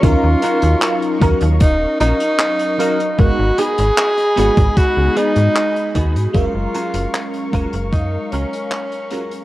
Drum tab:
HH |x-xxxxxxx-xxxxxx|x-xxxxxxx-xxxxxx|x-xxxxxxx-xxxxxx|
CP |----x-------x---|----x-------x---|----x-------x---|
BD |o-----o-o-------|o------oo-----o-|o-----o-o-------|